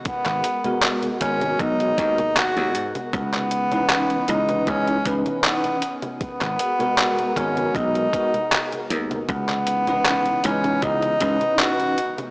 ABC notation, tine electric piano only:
X:1
M:4/4
L:1/16
Q:1/4=78
K:C#dor
V:1 name="Tine electric piano"
z3 [G,B,FA]3 [G,B,FA]4 [G,B,FA] z4 z | z3 [E,CDB]3 [E,CDB]2 [E,CDd] z [E,CDB]4 z2 | z3 [G,B,FA]3 [G,B,FA]4 [G,B,FA] z4 z | z3 [E,CDB]3 [E,CDB]2 [E,CDd] z [E,CDB]4 z2 |]